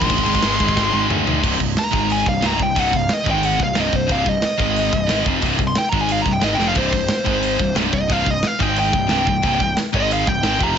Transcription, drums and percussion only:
0.02 kick medium
0.10 kick loud
0.10 crash medium
0.18 kick medium
0.26 crash medium
0.35 kick medium
0.43 snare loud
0.43 crash medium
0.60 kick medium
0.60 crash medium
0.68 kick medium
0.77 kick loud
0.77 snare medium
1.10 mid tom medium
1.27 floor tom loud
1.44 kick loud
1.44 crash loud
1.60 kick medium
1.77 snare loud
1.77 open hi-hat medium
1.93 kick loud
2.10 open hi-hat medium
2.26 kick medium
2.42 snare loud
2.42 open hi-hat medium
2.59 kick medium
2.76 kick loud
2.76 open hi-hat medium
2.93 kick medium
3.09 snare loud
3.09 open hi-hat medium
3.26 kick loud
3.43 open hi-hat medium
3.60 kick medium
3.75 snare loud
3.75 open hi-hat medium
3.93 kick medium
4.09 kick loud
4.09 open hi-hat medium
4.26 kick medium
4.42 snare loud
4.42 open hi-hat medium
4.59 kick loud
4.76 open hi-hat medium
4.93 kick loud
5.09 snare loud
5.09 open hi-hat medium
5.26 kick loud
5.42 kick loud
5.42 open hi-hat medium
5.59 kick medium
5.75 snare loud
5.75 open hi-hat medium
5.93 kick loud
6.09 open hi-hat medium
6.26 kick medium
6.42 snare loud
6.42 open hi-hat medium
6.59 snare medium
6.75 kick loud
6.75 crash loud
6.93 kick medium
7.08 snare loud
7.08 open hi-hat medium
7.26 kick medium
7.43 open hi-hat medium
7.59 kick medium
7.76 snare loud
7.76 open hi-hat medium
7.93 kick medium
8.10 kick loud
8.10 open hi-hat medium
8.26 kick medium
8.43 snare loud
8.43 open hi-hat medium
8.60 kick loud
8.76 open hi-hat medium
8.93 kick loud
9.09 snare loud
9.09 open hi-hat medium
9.27 kick medium
9.43 kick loud
9.43 open hi-hat medium
9.60 kick medium
9.77 snare loud
9.77 open hi-hat medium
9.94 kick loud
10.11 open hi-hat medium
10.27 kick loud
10.43 snare loud
10.43 open hi-hat medium
10.61 kick loud

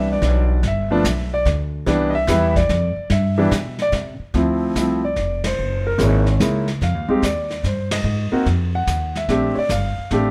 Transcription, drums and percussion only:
0.22 kick soft
0.22 snare medium
0.63 brush sweep medium
0.63 kick soft
0.63 snare medium
1.04 kick soft
1.04 snare medium
1.04 hi-hat pedal medium
1.46 kick soft
1.46 snare medium
1.87 brush sweep soft
1.87 kick soft
1.87 snare medium
2.28 kick soft
2.28 snare medium
2.28 hi-hat pedal medium
2.56 kick soft
2.56 snare soft
2.69 kick soft
2.69 snare medium
3.10 brush sweep medium
3.10 kick soft
3.10 snare medium
3.52 kick soft
3.52 snare medium
3.52 hi-hat pedal medium
3.79 snare soft
3.92 kick soft
3.92 snare medium
4.34 brush sweep soft
4.34 kick soft
4.34 snare soft
4.76 kick soft
4.76 snare medium
4.76 hi-hat pedal medium
5.16 kick soft
5.16 snare soft
5.44 snare medium
5.44 ride medium
5.58 brush sweep soft
5.99 kick soft
5.99 snare medium
5.99 hi-hat pedal medium
6.26 snare soft
6.40 kick soft
6.40 snare medium
6.40 hi-hat pedal medium
6.68 snare soft
6.81 brush sweep soft
6.81 kick soft
6.81 snare soft
7.23 kick soft
7.23 snare medium
7.23 hi-hat pedal medium
7.51 snare soft
7.64 kick soft
7.64 snare soft
7.91 snare medium
7.91 ride medium
8.05 brush sweep soft
8.46 kick soft
8.46 snare soft
8.87 kick soft
8.87 snare medium
8.87 hi-hat pedal medium
9.16 snare soft
9.28 brush sweep medium
9.28 kick soft
9.28 snare soft
9.70 kick soft
9.70 snare medium
9.70 hi-hat pedal medium
10.11 kick soft
10.11 snare soft

